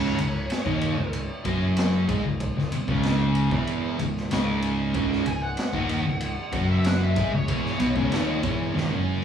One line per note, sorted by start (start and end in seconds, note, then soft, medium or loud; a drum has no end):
0.00 0.16 C#1 loud
0.00 0.16 C#2 medium
0.00 0.16 C#3 medium
0.00 1.11 C#5 loud
0.05 snare soft
0.17 0.48 C#1 medium
0.17 0.43 C#2 medium
0.17 ride medium
0.50 snare loud
0.50 ride loud
0.65 0.95 D#1 medium
0.65 0.96 D#2 medium
0.65 0.96 D#3 loud
0.65 kick loud
0.81 ride medium
0.97 1.27 C#1 medium
0.97 1.23 C#2 medium
1.13 ride loud
1.45 2.04 F#1 medium
1.45 2.07 F#2 medium
1.45 2.08 F#3 medium
1.45 kick loud
1.45 ride medium
1.77 snare loud
1.77 ride loud
2.08 2.23 G#1 medium
2.08 2.23 G#2 medium
2.08 2.23 G#3 medium
2.08 kick loud
2.08 ride medium
2.24 2.54 C#1 medium
2.24 2.50 C#2 medium
2.40 kick loud
2.40 ride loud
2.56 2.71 C#1 medium
2.56 2.72 C#2 medium
2.56 snare soft
2.72 muted overdriven electric guitar stroke medium
2.72 muted picked electric bass stroke soft
2.72 muted distorted electric guitar stroke medium
2.72 ride medium
2.88 3.48 C#1 medium
2.88 3.51 C#2 loud
2.88 3.51 C#3 loud
2.88 kick loud
3.03 snare loud
3.03 ride medium
3.35 ride medium
3.51 3.96 E1 loud
3.51 3.98 E2 medium
3.51 3.99 E3 medium
3.51 kick loud
3.67 ride medium
3.99 4.28 C#1 medium
3.99 4.25 C#2 medium
3.99 ride medium
4.17 snare soft
4.30 4.90 C#1 medium
4.30 4.93 C#2 loud
4.30 4.93 C#3 loud
4.30 snare loud
4.30 ride loud
4.62 ride medium
4.94 5.24 C#1 loud
4.94 5.25 C#2 medium
4.94 5.25 C#3 loud
4.94 kick loud
4.94 ride medium
5.12 snare soft
5.26 5.56 C#1 medium
5.26 5.51 C#2 medium
5.26 5.42 G#5 loud
5.26 ride medium
5.43 6.65 F#5 loud
5.57 snare loud
5.57 ride medium
5.73 6.03 D#1 medium
5.73 6.04 D#2 medium
5.73 6.04 D#3 loud
5.73 kick loud
5.89 ride medium
6.05 6.35 C#1 medium
6.05 6.31 C#2 medium
6.20 ride loud
6.52 7.12 F#1 loud
6.52 7.15 F#2 loud
6.52 7.15 F#3 loud
6.52 kick loud
6.52 ride medium
6.72 6.86 E5 medium
6.84 7.03 F#5 medium
6.84 snare loud
6.84 ride loud
7.03 7.32 E5 loud
7.16 7.31 G#1 medium
7.16 7.31 G#2 loud
7.16 7.31 G#3 loud
7.16 kick loud
7.16 ride medium
7.31 7.47 C#1 medium
7.31 7.47 C#2 medium
7.31 7.49 C#5 medium
7.48 7.77 E1 loud
7.48 7.79 E2 medium
7.48 7.79 E3 medium
7.48 8.72 C#5 loud
7.48 kick loud
7.48 ride loud
7.66 snare soft
7.79 7.94 B1 medium
7.79 7.94 B2 medium
7.79 7.95 B3 loud
7.79 ride medium
7.96 8.10 C#1 loud
7.96 8.11 C#2 loud
7.96 8.11 C#3 loud
7.96 kick loud
8.12 8.41 D#1 medium
8.12 8.42 D#2 loud
8.12 8.43 D#3 loud
8.12 snare loud
8.12 ride loud
8.43 8.73 E1 loud
8.43 8.73 E2 loud
8.43 8.73 E3 loud
8.43 kick loud
8.43 ride medium
8.73 8.90 D#1 loud
8.73 8.89 D#2 medium
8.73 8.89 D#3 loud
8.77 snare medium
8.90 9.25 F#1 medium
8.90 9.25 F#2 medium
8.90 9.25 F#3 loud
8.90 high tom medium